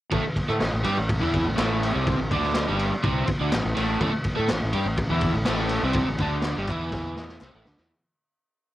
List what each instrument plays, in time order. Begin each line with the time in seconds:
0.11 fingered electric bass A1, overdriven electric guitar A2 A3, kick, ride
0.24 muted fingered electric bass stroke, muted overdriven electric guitar stroke
0.36 kick, ride
0.48 fingered electric bass A2, overdriven electric guitar A3 A4, snare
0.60 fingered electric bass A1, overdriven electric guitar A2, snare, clap, ride
0.72 fingered electric bass A1, overdriven electric guitar A2
0.83 fingered electric bass G2, overdriven electric guitar G3 G4, ride
0.98 fingered electric bass A1, overdriven electric guitar A2
1.09 kick, ride
1.20 fingered electric bass E2, overdriven electric guitar E3 E4
1.34 kick, ride
1.45 fingered electric bass A1, overdriven electric guitar A2
1.55 fingered electric bass A1, overdriven electric guitar A2 A3, snare, clap, ride
1.83 snare, ride
1.93 fingered electric bass C2, overdriven electric guitar C3 C4
2.07 kick, ride
2.19 fingered electric bass A1, overdriven electric guitar A2
2.31 fingered electric bass D2, overdriven electric guitar D3 D4, kick, ride
2.42 snare
2.54 snare, clap, ride
2.67 fingered electric bass G1, overdriven electric guitar G2 G3
2.79 ride
2.91 muted overdriven electric guitar stroke, muted fingered electric bass stroke
3.03 fingered electric bass C2, overdriven electric guitar C3 C4, kick, ride
3.27 muted overdriven electric guitar stroke, muted fingered electric bass stroke, kick, ride
3.40 fingered electric bass D2, overdriven electric guitar D3 D4
3.52 fingered electric bass A1, overdriven electric guitar A2, snare, clap, ride
3.63 fingered electric bass A1, overdriven electric guitar A2
3.75 fingered electric bass A1, overdriven electric guitar A2 A3, snare, ride
4.00 fingered electric bass A1, overdriven electric guitar A2 A3, kick, ride
4.13 muted overdriven electric guitar stroke, muted fingered electric bass stroke
4.24 kick, ride
4.36 fingered electric bass A2, overdriven electric guitar A3 A4
4.48 fingered electric bass A1, overdriven electric guitar A2, snare, clap, ride
4.61 fingered electric bass A1, overdriven electric guitar A2
4.73 fingered electric bass G2, overdriven electric guitar G3 G4, ride
4.85 fingered electric bass A1, overdriven electric guitar A2
4.97 kick, ride
5.10 fingered electric bass E2, overdriven electric guitar E3 E4
5.21 kick, ride
5.35 fingered electric bass A1, overdriven electric guitar A2
5.45 fingered electric bass A1, overdriven electric guitar A2 A3, snare, clap, ride
5.69 snare, ride
5.83 fingered electric bass C2, overdriven electric guitar C3 C4
5.93 kick, ride
6.08 fingered electric bass A1, overdriven electric guitar A2
6.18 fingered electric bass D2, overdriven electric guitar D3 D4, kick, ride
6.42 snare, clap, ride
6.56 fingered electric bass G1, overdriven electric guitar G2 G3
6.67 fingered electric bass E2, overdriven electric guitar E3 E4, kick, clap, ride
6.91 kick, snare
7.16 snare
7.28 snare
7.41 fingered electric bass C2, overdriven electric guitar C3 C4, snare, clap
7.54 fingered electric bass A1, overdriven electric guitar A2 A3
7.65 fingered electric bass D2, overdriven electric guitar D3 D4, snare
7.77 fingered electric bass E2, overdriven electric guitar E3 E4, snare